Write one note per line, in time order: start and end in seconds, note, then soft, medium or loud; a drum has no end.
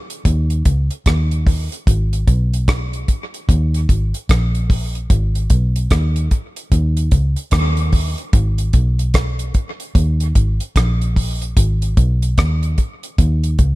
0.10 closed hi-hat medium
0.25 0.62 D#2 loud
0.25 kick loud
0.25 closed hi-hat medium
0.50 closed hi-hat soft
0.65 0.88 C#2 medium
0.65 kick medium
0.65 closed hi-hat medium
0.91 closed hi-hat medium
1.06 1.68 D#2 medium
1.06 kick medium
1.06 cross-stick medium
1.06 closed hi-hat medium
1.31 closed hi-hat soft
1.47 kick loud
1.47 open hi-hat medium
1.72 closed hi-hat soft
1.87 2.24 G#1 loud
1.87 kick loud
1.87 closed hi-hat medium
2.13 closed hi-hat medium
2.28 3.04 B1 medium
2.28 kick medium
2.28 closed hi-hat medium
2.54 closed hi-hat medium
2.68 kick medium
2.68 cross-stick loud
2.68 closed hi-hat medium
2.93 closed hi-hat soft
3.08 kick medium
3.08 closed hi-hat medium
3.34 closed hi-hat medium
3.49 3.85 D#2 loud
3.49 kick loud
3.49 closed hi-hat medium
3.74 closed hi-hat medium
3.89 4.12 G#1 medium
3.89 kick medium
3.89 closed hi-hat medium
4.14 closed hi-hat soft
4.29 5.06 A#1 medium
4.29 kick medium
4.29 cross-stick loud
4.29 closed hi-hat medium
4.55 closed hi-hat soft
4.70 kick medium
4.70 open hi-hat medium
4.95 closed hi-hat soft
5.10 5.47 G#1 loud
5.10 kick loud
5.10 closed hi-hat medium
5.35 closed hi-hat medium
5.50 5.87 B1 medium
5.50 kick medium
5.50 closed hi-hat medium
5.76 closed hi-hat medium
5.91 6.28 D#2 medium
5.91 kick loud
5.91 cross-stick medium
5.91 closed hi-hat medium
6.16 closed hi-hat medium
6.31 kick medium
6.31 closed hi-hat medium
6.56 closed hi-hat medium
6.72 7.08 D#2 loud
6.72 kick loud
6.72 closed hi-hat medium
6.97 closed hi-hat soft
7.11 7.35 C#2 medium
7.11 kick medium
7.11 closed hi-hat medium
7.36 closed hi-hat medium
7.51 8.14 D#2 loud
7.51 kick medium
7.51 cross-stick medium
7.51 closed hi-hat medium
7.77 closed hi-hat soft
7.92 kick medium
7.92 open hi-hat medium
8.18 closed hi-hat soft
8.33 8.70 G#1 loud
8.33 kick loud
8.33 closed hi-hat medium
8.58 closed hi-hat medium
8.73 9.51 B1 medium
8.73 kick medium
8.73 closed hi-hat medium
8.99 closed hi-hat medium
9.14 kick medium
9.14 cross-stick loud
9.14 closed hi-hat medium
9.39 closed hi-hat medium
9.54 kick medium
9.54 closed hi-hat medium
9.80 closed hi-hat medium
9.95 10.32 D#2 loud
9.95 kick loud
9.95 closed hi-hat medium
10.20 closed hi-hat medium
10.35 10.58 G#1 medium
10.35 kick medium
10.35 closed hi-hat medium
10.60 closed hi-hat medium
10.76 11.53 A#1 loud
10.76 kick medium
10.76 cross-stick loud
10.76 closed hi-hat medium
11.01 closed hi-hat soft
11.16 kick medium
11.16 open hi-hat medium
11.42 closed hi-hat soft
11.57 11.94 G#1 loud
11.57 kick loud
11.57 closed hi-hat loud
11.82 closed hi-hat medium
11.97 12.34 B1 medium
11.97 kick medium
11.97 closed hi-hat medium
12.22 closed hi-hat medium
12.38 12.75 D#2 medium
12.38 kick medium
12.38 cross-stick loud
12.38 closed hi-hat medium
12.63 closed hi-hat soft
12.78 kick medium
12.78 closed hi-hat medium
13.03 closed hi-hat medium
13.18 13.56 D#2 loud
13.18 kick loud
13.18 closed hi-hat medium
13.44 closed hi-hat medium
13.59 13.75 C#2 medium
13.59 kick medium
13.59 closed hi-hat medium